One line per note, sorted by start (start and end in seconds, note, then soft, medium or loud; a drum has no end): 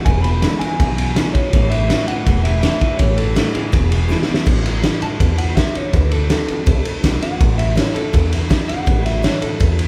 0.05 0.44 E1 medium
0.05 0.76 E2 medium
0.05 0.23 E2 medium
0.05 0.23 B2 medium
0.05 0.22 G#5 loud
0.05 kick loud
0.05 ride medium
0.22 0.41 E2 medium
0.22 0.41 B2 medium
0.22 0.59 B5 loud
0.22 ride medium
0.42 0.59 E2 medium
0.42 0.60 C#3 medium
0.42 0.60 D3 medium
0.42 0.60 G#3 medium
0.42 0.61 B3 medium
0.42 0.60 E4 loud
0.42 snare loud
0.42 ride medium
0.59 0.78 E2 medium
0.59 0.78 B2 medium
0.59 0.79 E4 medium
0.59 1.36 G#5 loud
0.59 muted upright bass stroke medium
0.59 ride medium
0.64 0.80 B3 medium
0.80 1.18 B1 medium
0.80 0.96 E2 medium
0.80 1.50 B2 loud
0.80 0.97 B2 medium
0.80 kick loud
0.80 ride medium
0.98 1.14 E2 medium
0.98 1.15 B2 medium
0.98 ride medium
1.16 1.33 E2 medium
1.16 1.33 B2 loud
1.16 1.34 D3 medium
1.16 1.34 G#3 medium
1.16 1.35 B3 medium
1.16 1.34 E4 loud
1.16 snare loud
1.16 ride medium
1.33 1.51 E2 medium
1.33 1.51 B2 medium
1.33 1.53 E4 medium
1.33 1.72 C#5 medium
1.33 muted upright bass stroke medium
1.33 kick medium
1.33 ride medium
1.37 1.54 B3 soft
1.53 1.92 A1 medium
1.53 1.70 A2 medium
1.53 2.23 A2 medium
1.53 1.70 E3 loud
1.53 kick loud
1.53 ride medium
1.70 1.88 A2 medium
1.70 1.88 E3 medium
1.70 2.07 E5 loud
1.70 ride medium
1.90 2.06 A2 medium
1.90 2.07 E3 medium
1.90 2.06 F#3 medium
1.90 2.08 G3 medium
1.90 2.08 C#4 medium
1.90 2.07 E4 medium
1.90 snare loud
1.90 ride medium
2.08 2.25 A2 medium
2.08 2.25 E3 loud
2.08 2.27 C#4 medium
2.08 2.26 E4 medium
2.08 2.42 F#5 loud
2.08 muted upright bass stroke medium
2.08 ride medium
2.26 2.65 E1 medium
2.26 2.97 E2 loud
2.26 2.43 A2 medium
2.26 2.43 E3 medium
2.26 kick loud
2.26 ride medium
2.44 2.61 A2 medium
2.44 2.62 E3 medium
2.44 2.60 E5 medium
2.44 ride medium
2.61 2.80 A2 medium
2.61 2.80 E3 medium
2.61 2.80 E3 loud
2.61 2.81 G3 medium
2.61 2.81 C#4 loud
2.61 2.79 E4 loud
2.61 3.00 E5 medium
2.61 snare loud
2.61 ride medium
2.80 2.98 A2 medium
2.80 2.98 E3 medium
2.80 3.00 C#4 soft
2.80 2.99 E4 medium
2.80 muted upright bass stroke medium
2.80 kick medium
2.80 ride medium
2.97 3.38 A1 medium
2.97 3.70 A2 medium
2.97 3.16 A2 medium
2.97 3.17 E3 loud
2.97 3.18 C#5 loud
2.97 kick loud
2.97 ride medium
3.17 3.35 A2 medium
3.17 3.35 E3 medium
3.17 3.53 A4 loud
3.17 ride medium
3.35 3.53 A2 medium
3.35 3.54 E3 medium
3.35 3.53 F#3 medium
3.35 3.54 G3 medium
3.35 3.54 C#4 medium
3.35 3.53 E4 medium
3.35 snare loud
3.35 ride medium
3.54 3.71 A2 medium
3.54 3.72 E3 medium
3.54 3.73 C#4 soft
3.54 3.72 E4 medium
3.54 4.24 G#4 medium
3.54 muted upright bass stroke medium
3.54 ride medium
3.72 4.12 E1 medium
3.72 4.43 E2 loud
3.72 3.90 E2 medium
3.72 3.90 B2 loud
3.72 kick loud
3.72 ride medium
3.92 4.08 E2 medium
3.92 4.09 B2 medium
3.92 ride medium
4.09 4.26 E2 medium
4.09 4.27 B2 medium
4.09 4.27 D3 medium
4.09 4.27 G#3 medium
4.09 4.28 B3 loud
4.09 4.26 E4 loud
4.09 snare medium
4.22 snare medium
4.27 4.45 E2 medium
4.27 4.45 B2 medium
4.27 4.46 B3 soft
4.27 4.45 E4 medium
4.27 muted upright bass stroke medium
4.34 snare loud
4.46 4.85 A1 medium
4.46 5.16 A2 medium
4.46 kick loud
4.46 crash medium
4.66 snare soft
4.66 ride medium
4.83 5.01 E3 medium
4.83 5.01 G3 medium
4.83 5.02 C#4 medium
4.83 5.00 E4 medium
4.83 snare loud
4.83 ride medium
5.01 5.20 C#4 medium
5.01 5.19 E4 medium
5.01 5.38 A5 loud
5.01 muted upright bass stroke medium
5.01 ride medium
5.20 5.59 E2 medium
5.20 5.55 B2 loud
5.20 kick loud
5.20 snare soft
5.20 ride medium
5.38 5.56 F#5 medium
5.38 ride medium
5.56 5.92 C#3 medium
5.56 5.74 E5 medium
5.56 kick medium
5.56 snare loud
5.56 ride medium
5.75 5.93 C#5 medium
5.75 muted upright bass stroke medium
5.75 ride medium
5.93 6.32 D2 medium
5.93 6.28 D3 medium
5.93 6.11 B4 medium
5.93 kick loud
5.93 ride medium
6.11 6.29 A4 medium
6.11 ride medium
6.29 6.48 D3 medium
6.29 6.48 A3 medium
6.29 6.48 C4 medium
6.29 6.47 F#4 medium
6.29 7.01 A4 loud
6.29 snare loud
6.29 ride medium
6.48 6.67 C4 medium
6.48 6.66 F#4 medium
6.48 muted upright bass stroke medium
6.48 ride medium
6.66 6.83 C2 medium
6.66 7.36 A2 loud
6.66 kick loud
6.66 ride medium
6.85 muted upright bass stroke medium
6.85 ride medium
7.03 7.19 B1 medium
7.03 7.21 D3 medium
7.03 7.22 A3 medium
7.03 7.22 C4 medium
7.03 7.20 F#4 loud
7.03 kick medium
7.03 snare loud
7.03 ride medium
7.22 7.40 C4 soft
7.22 7.40 F#4 medium
7.22 7.58 F#5 medium
7.22 muted upright bass stroke medium
7.22 snare soft
7.22 ride medium
7.40 7.79 A1 medium
7.40 8.10 A2 medium
7.40 kick loud
7.40 ride medium
7.58 7.76 E5 loud
7.58 ride medium
7.76 7.94 E3 medium
7.76 7.95 G3 medium
7.76 7.95 C#4 loud
7.76 7.93 E4 loud
7.76 7.94 C#5 loud
7.76 snare loud
7.76 ride medium
7.94 8.14 C#4 soft
7.94 8.13 E4 medium
7.94 8.31 A4 loud
7.94 muted upright bass stroke medium
7.94 ride medium
8.13 8.83 E2 loud
8.13 8.52 E2 medium
8.13 kick loud
8.13 snare soft
8.13 ride medium
8.33 snare soft
8.33 ride medium
8.49 8.68 E3 medium
8.49 8.68 G3 medium
8.49 8.68 C#4 loud
8.49 8.67 E4 loud
8.49 kick medium
8.49 snare loud
8.49 ride medium
8.68 8.87 C#4 soft
8.68 8.86 E4 medium
8.68 9.04 F#5 loud
8.68 muted upright bass stroke medium
8.68 snare soft
8.68 ride medium
8.86 9.26 A1 medium
8.86 9.57 A2 medium
8.86 kick loud
8.86 ride medium
9.06 9.24 E5 loud
9.06 snare soft
9.06 ride medium
9.23 9.41 E3 medium
9.23 9.41 G3 loud
9.23 9.42 C#4 loud
9.23 9.40 E4 medium
9.23 9.42 C#5 medium
9.23 snare loud
9.23 ride medium
9.41 9.60 C#4 soft
9.41 9.59 E4 medium
9.41 9.77 A4 medium
9.41 muted upright bass stroke medium
9.41 ride medium
9.60 9.88 E2 medium
9.60 kick loud
9.60 snare soft
9.60 ride medium
9.79 ride medium